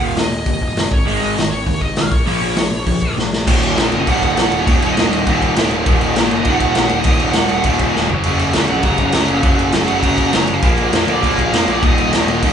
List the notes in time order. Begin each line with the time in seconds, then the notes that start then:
Already playing: D#2 A#2 D#3
0.00 D#1
0.04 F5
0.16 D#1 D#2 A#2, snare, open hi-hat
0.20 D#5
0.30 D#1
0.46 D#1 D#2 A#2, kick, open hi-hat
0.61 D#1, kick
0.75 F#1 D#2 A#2, snare, open hi-hat
0.91 G#1 C#5, kick
1.05 G#1 G#2 D#3 G#3, open hi-hat
1.21 G#1 D#5
1.37 G#1 G#2 D#3, snare, open hi-hat
1.51 G#1 C#5
1.67 D#2 G#2 D#3, kick, open hi-hat
1.81 G#1 D#5, kick
1.96 B1 G#2 D#3 F5, snare, open hi-hat
2.11 A#1 C#5, kick
2.26 A#1 A#2 F3 A#3, open hi-hat
2.42 A#1
2.56 A#1 A#2 F3, snare, open hi-hat
2.72 A#1
2.86 A#1 A#2 F3, kick, open hi-hat
3.02 A#1, kick
3.17 A#1 A#2 F3, snare
3.31 A#1, snare
3.47 D#1 D#2 A#2 D#3, kick, crash
3.62 D#1, crash
3.76 A#1 D#2 A#2 D#3, snare, crash
3.91 F#1, crash
3.96 D#5
4.07 D#1 D#2 A#2 D#3 F#5, kick, crash
4.22 D#1, kick, crash
4.32 A#1 F#5
4.37 D#2 A#2 D#3, snare, crash
4.52 D#1, crash
4.60 C#5
4.67 D#1 D#2 A#2 D#3, kick, crash
4.82 D#1, crash
4.90 D#5
4.96 D#1 D#2 A#2 D#3 D#5, snare, crash
5.11 D#1, crash
5.27 D#1 D#2 A#2 D#3, kick, crash
5.42 D#1, kick, crash
5.55 D#1 D#2 A#2 D#3, snare, crash
5.70 D#1, crash
5.85 D#1 D#2 A#2 D#3, kick, crash
6.00 D#1, crash
6.16 A#1 D#2 A#2 D#3, snare, crash
6.31 F#1 D#5, crash
6.45 D#1 D#2 A#2 D#3 F#5, kick, crash
6.60 D#1, kick, crash
6.70 F#5
6.75 A#1 D#2 A#2 D#3, snare, crash
6.89 D#1, crash
7.00 D#5, crash
7.05 D#1 D#2 A#2 D#3, kick
7.20 D#1, crash
7.30 F#5, crash
7.34 D#1 D#2 A#2 D#3 F#5, snare
7.49 D#1, crash
7.64 D#1 D#2 A#2 D#3, kick, crash
7.79 D#1, kick, crash
7.96 D#1 D#2 A#2 D#3, snare
8.10 F#1 F#2 C#3 F#3, floor tom
8.24 F#1 F#2 C#3 F#3, crash
8.39 F#1, crash
8.53 C#2 F#2 C#3 F#3, snare, crash
8.68 A#1 C#3 F#3 F#5, crash
8.73 F#2
8.83 F#1 F#2 C#3 F#3 A#5, kick, crash
8.98 F#1, kick, crash
9.06 A#5
9.12 C#2 F#2 C#3 F#3, snare, crash
9.28 F#1 F#2 C#3 F#3, crash
9.36 F5
9.43 F#1 F#2 C#3 F#3, kick, crash
9.58 F#1, crash
9.72 F#1 F#2 C#3 F#3, snare, crash
9.87 F#1 F#2 C#3 F#3 F#5, crash
10.00 F#1 F#2 C#3 F#3 A#5, kick, crash
10.17 F#1, kick, crash
10.22 A#5
10.32 F#1 F#2 C#3 F#3, snare, crash
10.47 F#1, crash
10.53 F5
10.62 A#1 A#2 F3 A#3, kick, crash
10.77 A#1, crash
10.92 F2 A#2 F3 A#3, snare, crash
11.07 D2 D5, crash
11.22 A#1 A#2 F3 A#3, kick, crash
11.38 A#1 F5, kick, crash
11.53 F2 A#2 F3 A#3, snare, crash
11.67 A#1, crash
11.72 D5
11.82 D#1 D#2 A#2 D#3 D#5, kick, crash
11.97 D#1, crash
12.13 D#1 D#2 A#2 D#3, snare, crash
12.28 D#1, crash
12.43 D#1 D#2 A#2 D#3, kick, crash